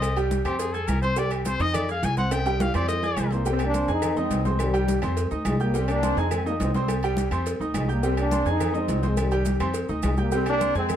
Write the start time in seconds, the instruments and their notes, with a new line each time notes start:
Already playing: upright bass C2, upright piano C4 C5 C6, trumpet D#5
0.02 cowbell, high conga, low agogo, claves, maracas
0.16 upright piano G3 G4 G5, high conga, low agogo, maracas
0.31 cowbell, high conga, low timbale, maracas
0.45 upright bass F2, upright piano C4 C5 C6, trumpet G4, cowbell, low agogo, claves, maracas
0.59 trumpet G#4, cowbell, high conga, low agogo, maracas
0.73 upright piano G#4 G#5 G#6, trumpet A4, high conga, maracas
0.88 upright bass C2, trumpet A#4, cowbell, high conga, low timbale, low agogo, claves, maracas
1.02 upright piano C4 C5 C6, trumpet C5, high conga, maracas
1.16 upright piano G3 G4 G5, trumpet D5, cowbell, maracas
1.31 trumpet G4, cowbell, high conga, low agogo, claves, maracas
1.45 upright piano C4 C5 C6, trumpet C5, cowbell, high conga, low timbale, low agogo, maracas
1.59 upright bass F2, upright piano D#4 D#5 D#6, trumpet D#5, cowbell, maracas
1.74 trumpet D5, cowbell, high conga, low conga, low agogo, claves, maracas
1.89 upright piano G#4 G#5 G#6, trumpet F5, high conga, maracas
2.03 upright bass C2, trumpet G#5, cowbell, high conga, low timbale, low agogo, maracas
2.17 upright piano C4 C5 C6, trumpet F#5, cowbell, high conga, maracas
2.31 trumpet G5, cowbell, high timbale, low agogo, claves, maracas
2.46 upright piano G3 G4 G5, high conga, high timbale, low agogo, maracas
2.60 trumpet F5, cowbell, high conga, low timbale, maracas
2.74 upright bass F2, upright piano C4 C5 C6, trumpet D5, cowbell, low timbale, low agogo, claves, maracas
2.88 trumpet D#5, cowbell, high conga, low timbale, low agogo, maracas
3.03 upright piano G#4 G#5 G#6, high conga, low timbale, maracas
3.17 upright bass C2, trombone section F3 G#3, cowbell, high conga, low timbale, low agogo, claves, maracas
3.31 trombone section G3 A#3, upright piano C4 C5 C6, low timbale, maracas
3.45 upright piano G3 G4 G5, trombone section G3 C4, cowbell, high conga, maracas
3.59 trombone section D4, cowbell, high conga, low agogo, claves, maracas
3.63 trombone section A#3
3.74 upright piano C4 C5 C6, cowbell, high conga, low timbale, low agogo, maracas
3.88 upright bass F2, trombone section C4 D#4, upright piano G#4 G#5 G#6, cowbell, maracas
4.02 cowbell, high conga, low conga, low agogo, claves, maracas
4.16 trombone section G#3 C4, upright piano D#4 D#5 D#6, high conga, low conga, maracas
4.30 upright bass C2, cowbell, high conga, low timbale, low agogo, maracas
4.45 trombone section F3 G#3, upright piano C4 C5 C6, cowbell, high conga, maracas
4.59 trombone section D#3 G3, cowbell, high conga, low agogo, claves, maracas
4.73 upright piano G3 G4 G5, high conga, low agogo, maracas
4.88 cowbell, high conga, low timbale, maracas
5.02 upright bass F2, upright piano C4 C5 C6, cowbell, high conga, low agogo, claves, maracas
5.17 cowbell, high conga, low agogo, maracas
5.31 upright bass D2, upright piano D#4 D#5 D#6, high conga, maracas
5.45 upright bass C2, trombone section F3 G#3, cowbell, high conga, low timbale, low agogo, claves, maracas
5.60 trombone section G3 A#3, upright piano G4 G5 G6, high conga, maracas
5.74 upright piano G3 G4 G5, trombone section G3 C4, cowbell, maracas
5.88 trombone section A#3 D4, cowbell, high conga, low agogo, claves, maracas
6.03 upright piano C4 C5 C6, cowbell, high conga, low timbale, low agogo, maracas
6.17 upright bass F2, trombone section C4 D#4, upright piano G#4 G#5 G#6, cowbell, maracas
6.31 trombone section G#3 C4, cowbell, high conga, low conga, low agogo, claves, maracas
6.46 trombone section G3 A#3, upright piano D#4 D#5 D#6, high conga, maracas
6.60 upright bass C2, trombone section G#3 C4, cowbell, high conga, low timbale, low agogo, maracas
6.74 trombone section G3 C4, upright piano C4 C5 C6, cowbell, high conga, maracas
6.88 cowbell, high conga, low agogo, claves, maracas
7.03 upright piano G3 G4 G5, high conga, low agogo, maracas
7.17 cowbell, high conga, low timbale, maracas
7.31 upright bass F2, upright piano C4 C5 C6, cowbell, low agogo, claves, maracas
7.46 cowbell, high conga, low agogo, maracas
7.60 upright bass D2, upright piano D#4 D#5 D#6, high conga, maracas
7.74 upright bass C2, trombone section F3 G#3, cowbell, high conga, low timbale, low agogo, claves, maracas
7.88 trombone section G3 A#3, upright piano G4 G5 G6, high conga, maracas
8.03 upright piano G3 G4 G5, trombone section G3 C4, cowbell, maracas
8.17 trombone section A#3 D4, cowbell, high conga, low agogo, claves, maracas
8.31 upright piano C4 C5 C6, cowbell, high conga, low timbale, low agogo, maracas
8.45 upright bass F2, trombone section C4 D#4, upright piano G#4 G#5 G#6, cowbell, high conga, maracas
8.60 cowbell, high conga, low conga, low agogo, claves, maracas
8.74 trombone section G#3 C4, upright piano D#4 D#5 D#6, high conga, maracas
8.88 upright bass C2, cowbell, high conga, low timbale, low agogo, maracas
9.03 trombone section F3 G#3, upright piano C4 C5 C6, cowbell, high conga, maracas
9.17 trombone section D#3 G3, cowbell, high conga, low agogo, claves, maracas
9.31 upright piano G3 G4 G5, high conga, low agogo, maracas
9.45 cowbell, high conga, low timbale, maracas
9.60 upright bass F2, upright piano C4 C5 C6, cowbell, high conga, low agogo, claves, maracas
9.74 cowbell, high conga, low agogo, maracas
9.89 upright bass D2, upright piano D#4 D#5 D#6, high conga, maracas
10.02 upright bass C2, trombone section F3 G#3, cowbell, high conga, low timbale, low agogo, claves, maracas
10.17 trombone section G3 A#3, upright piano G4 G5 G6, high conga, maracas
10.32 upright piano G3 G4 G5, trombone section G3 C4, cowbell, high conga, maracas
10.46 trombone section A#3 D4, cowbell, high conga, low agogo, claves, maracas
10.60 upright piano C4 C5 C6, cowbell, high conga, low timbale, low agogo, maracas
10.75 upright bass F2, trombone section G#3 C4, upright piano G#4 G#5 G#6, cowbell, high conga, maracas
10.89 cowbell, high conga, low conga, low agogo, claves, maracas